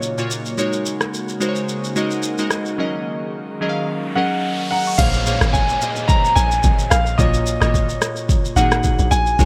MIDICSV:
0, 0, Header, 1, 8, 480
1, 0, Start_track
1, 0, Key_signature, -5, "minor"
1, 0, Tempo, 550459
1, 509, Time_signature, 4, 2, 24, 8
1, 8241, End_track
2, 0, Start_track
2, 0, Title_t, "Grand piano"
2, 0, Program_c, 0, 0
2, 0, Note_on_c, 0, 73, 76
2, 229, Note_off_c, 0, 73, 0
2, 3623, Note_on_c, 0, 78, 88
2, 4091, Note_off_c, 0, 78, 0
2, 4104, Note_on_c, 0, 78, 88
2, 4341, Note_on_c, 0, 77, 101
2, 4354, Note_off_c, 0, 78, 0
2, 4821, Note_on_c, 0, 80, 98
2, 4840, Note_off_c, 0, 77, 0
2, 5271, Note_off_c, 0, 80, 0
2, 5299, Note_on_c, 0, 82, 114
2, 5541, Note_on_c, 0, 80, 119
2, 5552, Note_off_c, 0, 82, 0
2, 6019, Note_on_c, 0, 77, 98
2, 6040, Note_off_c, 0, 80, 0
2, 6258, Note_on_c, 0, 75, 96
2, 6272, Note_off_c, 0, 77, 0
2, 6618, Note_off_c, 0, 75, 0
2, 6631, Note_on_c, 0, 75, 81
2, 7082, Note_off_c, 0, 75, 0
2, 7466, Note_on_c, 0, 78, 94
2, 7944, Note_on_c, 0, 80, 121
2, 7962, Note_off_c, 0, 78, 0
2, 8241, Note_off_c, 0, 80, 0
2, 8241, End_track
3, 0, Start_track
3, 0, Title_t, "Synth keys"
3, 0, Program_c, 1, 88
3, 0, Control_c, 1, 64, 127
3, 0, Note_on_c, 1, 46, 75
3, 0, Note_on_c, 1, 58, 68
3, 0, Note_on_c, 1, 65, 69
3, 0, Note_on_c, 1, 66, 68
3, 0, Note_on_c, 1, 73, 85
3, 87, Note_off_c, 1, 73, 0
3, 157, Note_off_c, 1, 46, 0
3, 157, Note_on_c, 1, 46, 82
3, 160, Note_off_c, 1, 58, 0
3, 160, Note_on_c, 1, 58, 75
3, 165, Note_off_c, 1, 65, 0
3, 165, Note_on_c, 1, 65, 77
3, 168, Note_off_c, 1, 66, 0
3, 168, Note_on_c, 1, 66, 74
3, 172, Note_on_c, 1, 73, 95
3, 442, Note_off_c, 1, 46, 0
3, 444, Note_off_c, 1, 58, 0
3, 446, Note_off_c, 1, 65, 0
3, 448, Note_off_c, 1, 66, 0
3, 450, Note_off_c, 1, 73, 0
3, 504, Note_on_c, 1, 56, 84
3, 508, Note_on_c, 1, 63, 75
3, 511, Note_on_c, 1, 66, 79
3, 515, Note_on_c, 1, 70, 79
3, 518, Note_on_c, 1, 73, 98
3, 520, Control_c, 1, 64, 0
3, 675, Control_c, 1, 64, 127
3, 1092, Note_off_c, 1, 56, 0
3, 1094, Note_off_c, 1, 63, 0
3, 1096, Note_off_c, 1, 66, 0
3, 1097, Note_off_c, 1, 70, 0
3, 1099, Note_off_c, 1, 73, 0
3, 1224, Note_on_c, 1, 56, 85
3, 1228, Note_on_c, 1, 63, 78
3, 1232, Note_on_c, 1, 66, 80
3, 1236, Note_on_c, 1, 70, 77
3, 1240, Note_on_c, 1, 72, 75
3, 1297, Note_off_c, 1, 72, 0
3, 1297, Note_on_c, 1, 73, 93
3, 1620, Note_off_c, 1, 56, 0
3, 1622, Note_off_c, 1, 63, 0
3, 1624, Note_off_c, 1, 66, 0
3, 1626, Note_off_c, 1, 70, 0
3, 1657, Note_off_c, 1, 73, 0
3, 1707, Note_on_c, 1, 56, 92
3, 1711, Note_on_c, 1, 63, 83
3, 1715, Note_on_c, 1, 66, 84
3, 1719, Note_on_c, 1, 70, 86
3, 1721, Note_on_c, 1, 75, 100
3, 2001, Note_off_c, 1, 56, 0
3, 2003, Note_off_c, 1, 63, 0
3, 2005, Note_off_c, 1, 66, 0
3, 2007, Note_off_c, 1, 70, 0
3, 2008, Note_off_c, 1, 75, 0
3, 2081, Note_on_c, 1, 56, 85
3, 2086, Note_on_c, 1, 63, 79
3, 2088, Note_on_c, 1, 66, 75
3, 2093, Note_on_c, 1, 70, 75
3, 2096, Note_on_c, 1, 75, 92
3, 2365, Note_off_c, 1, 56, 0
3, 2367, Note_off_c, 1, 63, 0
3, 2368, Note_off_c, 1, 66, 0
3, 2370, Note_off_c, 1, 70, 0
3, 2372, Note_off_c, 1, 75, 0
3, 2426, Note_on_c, 1, 54, 84
3, 2429, Note_on_c, 1, 61, 79
3, 2435, Note_on_c, 1, 68, 78
3, 2438, Note_on_c, 1, 70, 76
3, 2442, Control_c, 1, 64, 0
3, 2443, Note_on_c, 1, 75, 96
3, 2591, Control_c, 1, 64, 127
3, 3013, Note_off_c, 1, 54, 0
3, 3015, Note_off_c, 1, 61, 0
3, 3018, Note_off_c, 1, 68, 0
3, 3019, Note_off_c, 1, 70, 0
3, 3022, Note_off_c, 1, 75, 0
3, 3148, Note_on_c, 1, 54, 88
3, 3151, Note_on_c, 1, 61, 79
3, 3155, Note_on_c, 1, 68, 83
3, 3159, Note_on_c, 1, 70, 80
3, 3162, Note_on_c, 1, 75, 76
3, 3218, Note_off_c, 1, 75, 0
3, 3220, Note_on_c, 1, 77, 98
3, 3542, Note_off_c, 1, 54, 0
3, 3544, Note_off_c, 1, 61, 0
3, 3546, Note_off_c, 1, 68, 0
3, 3547, Note_off_c, 1, 70, 0
3, 3578, Note_off_c, 1, 77, 0
3, 3629, Note_on_c, 1, 54, 89
3, 3632, Note_on_c, 1, 61, 82
3, 3635, Note_on_c, 1, 68, 83
3, 3640, Note_on_c, 1, 70, 83
3, 3644, Note_on_c, 1, 75, 99
3, 3922, Note_off_c, 1, 54, 0
3, 3923, Note_off_c, 1, 61, 0
3, 3925, Note_off_c, 1, 68, 0
3, 3927, Note_off_c, 1, 70, 0
3, 3929, Note_off_c, 1, 75, 0
3, 4008, Note_on_c, 1, 78, 65
3, 4107, Note_off_c, 1, 78, 0
3, 4116, Note_on_c, 1, 82, 69
3, 4238, Note_off_c, 1, 82, 0
3, 4248, Note_on_c, 1, 85, 65
3, 4348, Note_on_c, 1, 46, 75
3, 4352, Note_on_c, 1, 58, 69
3, 4356, Note_on_c, 1, 68, 71
3, 4360, Note_on_c, 1, 72, 71
3, 4361, Control_c, 1, 64, 0
3, 4364, Note_on_c, 1, 73, 86
3, 4473, Note_off_c, 1, 85, 0
3, 4532, Control_c, 1, 64, 127
3, 4545, Note_off_c, 1, 46, 0
3, 4548, Note_off_c, 1, 58, 0
3, 4549, Note_off_c, 1, 68, 0
3, 4551, Note_off_c, 1, 72, 0
3, 4553, Note_off_c, 1, 73, 0
3, 4589, Note_on_c, 1, 46, 81
3, 4593, Note_on_c, 1, 58, 69
3, 4597, Note_on_c, 1, 68, 69
3, 4601, Note_on_c, 1, 72, 74
3, 4605, Note_on_c, 1, 73, 88
3, 4983, Note_off_c, 1, 46, 0
3, 4985, Note_off_c, 1, 58, 0
3, 4987, Note_off_c, 1, 68, 0
3, 4989, Note_off_c, 1, 72, 0
3, 4991, Note_off_c, 1, 73, 0
3, 5069, Note_on_c, 1, 46, 77
3, 5074, Note_on_c, 1, 58, 72
3, 5078, Note_on_c, 1, 68, 68
3, 5081, Note_on_c, 1, 72, 71
3, 5085, Note_on_c, 1, 75, 88
3, 5842, Note_off_c, 1, 46, 0
3, 5844, Note_off_c, 1, 58, 0
3, 5846, Note_off_c, 1, 68, 0
3, 5848, Note_off_c, 1, 72, 0
3, 5850, Note_off_c, 1, 75, 0
3, 6267, Note_on_c, 1, 46, 80
3, 6271, Note_on_c, 1, 58, 76
3, 6275, Note_on_c, 1, 65, 71
3, 6279, Note_on_c, 1, 66, 71
3, 6281, Control_c, 1, 64, 0
3, 6283, Note_on_c, 1, 73, 84
3, 6422, Control_c, 1, 64, 127
3, 6561, Note_off_c, 1, 46, 0
3, 6563, Note_off_c, 1, 58, 0
3, 6565, Note_off_c, 1, 65, 0
3, 6567, Note_off_c, 1, 66, 0
3, 6569, Note_off_c, 1, 73, 0
3, 6636, Note_on_c, 1, 46, 80
3, 6641, Note_on_c, 1, 58, 72
3, 6645, Note_on_c, 1, 65, 68
3, 6648, Note_on_c, 1, 66, 71
3, 6652, Note_on_c, 1, 73, 86
3, 7306, Note_off_c, 1, 46, 0
3, 7308, Note_off_c, 1, 58, 0
3, 7310, Note_off_c, 1, 65, 0
3, 7312, Note_off_c, 1, 66, 0
3, 7314, Note_off_c, 1, 73, 0
3, 7468, Note_on_c, 1, 46, 81
3, 7471, Note_on_c, 1, 58, 75
3, 7476, Note_on_c, 1, 63, 78
3, 7481, Note_on_c, 1, 66, 77
3, 7484, Note_on_c, 1, 68, 94
3, 8054, Note_off_c, 1, 46, 0
3, 8056, Note_off_c, 1, 58, 0
3, 8058, Note_off_c, 1, 63, 0
3, 8061, Note_off_c, 1, 66, 0
3, 8062, Note_off_c, 1, 68, 0
3, 8188, Note_on_c, 1, 56, 81
3, 8191, Note_on_c, 1, 63, 72
3, 8196, Note_on_c, 1, 66, 77
3, 8199, Control_c, 1, 64, 0
3, 8201, Note_on_c, 1, 70, 75
3, 8204, Note_on_c, 1, 73, 87
3, 8241, Note_off_c, 1, 56, 0
3, 8241, Note_off_c, 1, 63, 0
3, 8241, Note_off_c, 1, 66, 0
3, 8241, Note_off_c, 1, 70, 0
3, 8241, Note_off_c, 1, 73, 0
3, 8241, End_track
4, 0, Start_track
4, 0, Title_t, "Analog synth pad"
4, 0, Program_c, 2, 89
4, 0, Note_on_c, 2, 49, 82
4, 0, Note_on_c, 2, 54, 76
4, 0, Note_on_c, 2, 58, 74
4, 0, Note_on_c, 2, 63, 90
4, 475, Note_off_c, 2, 58, 0
4, 490, Note_off_c, 2, 63, 0
4, 491, Note_off_c, 2, 49, 0
4, 491, Note_off_c, 2, 54, 0
4, 508, Note_on_c, 2, 49, 83
4, 509, Note_on_c, 2, 56, 74
4, 509, Note_on_c, 2, 58, 73
4, 509, Note_on_c, 2, 66, 92
4, 2409, Note_off_c, 2, 49, 0
4, 2431, Note_on_c, 2, 51, 82
4, 4314, Note_off_c, 2, 56, 0
4, 4314, Note_off_c, 2, 58, 0
4, 4314, Note_off_c, 2, 66, 0
4, 4331, Note_off_c, 2, 51, 0
4, 8241, End_track
5, 0, Start_track
5, 0, Title_t, "Log drum bass"
5, 0, Program_c, 3, 39
5, 4349, Note_on_c, 3, 34, 113
5, 4682, Note_off_c, 3, 34, 0
5, 4721, Note_on_c, 3, 32, 100
5, 5032, Note_off_c, 3, 32, 0
5, 5547, Note_on_c, 3, 34, 92
5, 5763, Note_off_c, 3, 34, 0
5, 5791, Note_on_c, 3, 32, 102
5, 6005, Note_off_c, 3, 32, 0
5, 6028, Note_on_c, 3, 34, 96
5, 6243, Note_off_c, 3, 34, 0
5, 6269, Note_on_c, 3, 34, 106
5, 6602, Note_off_c, 3, 34, 0
5, 6640, Note_on_c, 3, 32, 90
5, 6952, Note_off_c, 3, 32, 0
5, 7467, Note_on_c, 3, 32, 96
5, 7683, Note_off_c, 3, 32, 0
5, 7840, Note_on_c, 3, 34, 93
5, 7937, Note_off_c, 3, 34, 0
5, 7947, Note_on_c, 3, 34, 95
5, 8163, Note_off_c, 3, 34, 0
5, 8189, Note_on_c, 3, 32, 110
5, 8241, Note_off_c, 3, 32, 0
5, 8241, End_track
6, 0, Start_track
6, 0, Title_t, "Downlifter"
6, 0, Program_c, 4, 103
6, 0, Note_on_c, 4, 60, 76
6, 510, Note_off_c, 4, 60, 0
6, 4349, Note_on_c, 4, 60, 85
6, 8189, Note_off_c, 4, 60, 0
6, 8241, End_track
7, 0, Start_track
7, 0, Title_t, "Riser"
7, 0, Program_c, 5, 103
7, 2429, Note_on_c, 5, 60, 78
7, 4349, Note_off_c, 5, 60, 0
7, 8241, End_track
8, 0, Start_track
8, 0, Title_t, "Drums"
8, 22, Note_on_c, 9, 82, 72
8, 109, Note_off_c, 9, 82, 0
8, 158, Note_on_c, 9, 82, 55
8, 245, Note_off_c, 9, 82, 0
8, 268, Note_on_c, 9, 82, 85
8, 355, Note_off_c, 9, 82, 0
8, 397, Note_on_c, 9, 82, 40
8, 484, Note_off_c, 9, 82, 0
8, 506, Note_on_c, 9, 82, 75
8, 594, Note_off_c, 9, 82, 0
8, 635, Note_on_c, 9, 82, 57
8, 722, Note_off_c, 9, 82, 0
8, 747, Note_on_c, 9, 82, 85
8, 835, Note_off_c, 9, 82, 0
8, 879, Note_on_c, 9, 37, 92
8, 881, Note_on_c, 9, 82, 50
8, 966, Note_off_c, 9, 37, 0
8, 968, Note_off_c, 9, 82, 0
8, 994, Note_on_c, 9, 82, 71
8, 1082, Note_off_c, 9, 82, 0
8, 1120, Note_on_c, 9, 82, 54
8, 1207, Note_off_c, 9, 82, 0
8, 1229, Note_on_c, 9, 82, 91
8, 1317, Note_off_c, 9, 82, 0
8, 1356, Note_on_c, 9, 82, 47
8, 1443, Note_off_c, 9, 82, 0
8, 1471, Note_on_c, 9, 82, 75
8, 1558, Note_off_c, 9, 82, 0
8, 1606, Note_on_c, 9, 82, 51
8, 1693, Note_off_c, 9, 82, 0
8, 1709, Note_on_c, 9, 82, 87
8, 1796, Note_off_c, 9, 82, 0
8, 1837, Note_on_c, 9, 82, 50
8, 1925, Note_off_c, 9, 82, 0
8, 1941, Note_on_c, 9, 82, 79
8, 2029, Note_off_c, 9, 82, 0
8, 2077, Note_on_c, 9, 82, 54
8, 2164, Note_off_c, 9, 82, 0
8, 2185, Note_on_c, 9, 37, 94
8, 2186, Note_on_c, 9, 82, 87
8, 2272, Note_off_c, 9, 37, 0
8, 2273, Note_off_c, 9, 82, 0
8, 2317, Note_on_c, 9, 82, 39
8, 2404, Note_off_c, 9, 82, 0
8, 4348, Note_on_c, 9, 36, 124
8, 4348, Note_on_c, 9, 82, 81
8, 4349, Note_on_c, 9, 49, 101
8, 4435, Note_off_c, 9, 82, 0
8, 4436, Note_off_c, 9, 36, 0
8, 4436, Note_off_c, 9, 49, 0
8, 4476, Note_on_c, 9, 82, 61
8, 4563, Note_off_c, 9, 82, 0
8, 4588, Note_on_c, 9, 82, 92
8, 4675, Note_off_c, 9, 82, 0
8, 4720, Note_on_c, 9, 37, 97
8, 4722, Note_on_c, 9, 82, 54
8, 4807, Note_off_c, 9, 37, 0
8, 4809, Note_off_c, 9, 82, 0
8, 4829, Note_on_c, 9, 36, 97
8, 4834, Note_on_c, 9, 82, 75
8, 4916, Note_off_c, 9, 36, 0
8, 4921, Note_off_c, 9, 82, 0
8, 4961, Note_on_c, 9, 82, 60
8, 5048, Note_off_c, 9, 82, 0
8, 5070, Note_on_c, 9, 82, 96
8, 5157, Note_off_c, 9, 82, 0
8, 5196, Note_on_c, 9, 82, 52
8, 5283, Note_off_c, 9, 82, 0
8, 5309, Note_on_c, 9, 36, 127
8, 5310, Note_on_c, 9, 82, 81
8, 5396, Note_off_c, 9, 36, 0
8, 5398, Note_off_c, 9, 82, 0
8, 5447, Note_on_c, 9, 82, 55
8, 5535, Note_off_c, 9, 82, 0
8, 5550, Note_on_c, 9, 82, 96
8, 5637, Note_off_c, 9, 82, 0
8, 5679, Note_on_c, 9, 82, 56
8, 5766, Note_off_c, 9, 82, 0
8, 5783, Note_on_c, 9, 82, 83
8, 5791, Note_on_c, 9, 36, 94
8, 5870, Note_off_c, 9, 82, 0
8, 5878, Note_off_c, 9, 36, 0
8, 5919, Note_on_c, 9, 82, 59
8, 6006, Note_off_c, 9, 82, 0
8, 6028, Note_on_c, 9, 37, 101
8, 6030, Note_on_c, 9, 82, 97
8, 6116, Note_off_c, 9, 37, 0
8, 6117, Note_off_c, 9, 82, 0
8, 6159, Note_on_c, 9, 82, 44
8, 6246, Note_off_c, 9, 82, 0
8, 6269, Note_on_c, 9, 36, 119
8, 6270, Note_on_c, 9, 82, 81
8, 6357, Note_off_c, 9, 36, 0
8, 6357, Note_off_c, 9, 82, 0
8, 6398, Note_on_c, 9, 82, 62
8, 6486, Note_off_c, 9, 82, 0
8, 6509, Note_on_c, 9, 82, 94
8, 6596, Note_off_c, 9, 82, 0
8, 6641, Note_on_c, 9, 37, 96
8, 6644, Note_on_c, 9, 82, 54
8, 6729, Note_off_c, 9, 37, 0
8, 6731, Note_off_c, 9, 82, 0
8, 6750, Note_on_c, 9, 36, 102
8, 6756, Note_on_c, 9, 82, 72
8, 6837, Note_off_c, 9, 36, 0
8, 6843, Note_off_c, 9, 82, 0
8, 6881, Note_on_c, 9, 82, 61
8, 6968, Note_off_c, 9, 82, 0
8, 6991, Note_on_c, 9, 37, 97
8, 6992, Note_on_c, 9, 82, 101
8, 7078, Note_off_c, 9, 37, 0
8, 7079, Note_off_c, 9, 82, 0
8, 7118, Note_on_c, 9, 82, 54
8, 7205, Note_off_c, 9, 82, 0
8, 7230, Note_on_c, 9, 36, 125
8, 7232, Note_on_c, 9, 82, 82
8, 7317, Note_off_c, 9, 36, 0
8, 7319, Note_off_c, 9, 82, 0
8, 7369, Note_on_c, 9, 82, 51
8, 7456, Note_off_c, 9, 82, 0
8, 7470, Note_on_c, 9, 82, 96
8, 7558, Note_off_c, 9, 82, 0
8, 7600, Note_on_c, 9, 82, 55
8, 7602, Note_on_c, 9, 37, 101
8, 7687, Note_off_c, 9, 82, 0
8, 7689, Note_off_c, 9, 37, 0
8, 7702, Note_on_c, 9, 82, 84
8, 7711, Note_on_c, 9, 36, 96
8, 7789, Note_off_c, 9, 82, 0
8, 7798, Note_off_c, 9, 36, 0
8, 7838, Note_on_c, 9, 82, 59
8, 7925, Note_off_c, 9, 82, 0
8, 7949, Note_on_c, 9, 82, 95
8, 8036, Note_off_c, 9, 82, 0
8, 8079, Note_on_c, 9, 82, 45
8, 8166, Note_off_c, 9, 82, 0
8, 8188, Note_on_c, 9, 82, 80
8, 8189, Note_on_c, 9, 36, 120
8, 8241, Note_off_c, 9, 36, 0
8, 8241, Note_off_c, 9, 82, 0
8, 8241, End_track
0, 0, End_of_file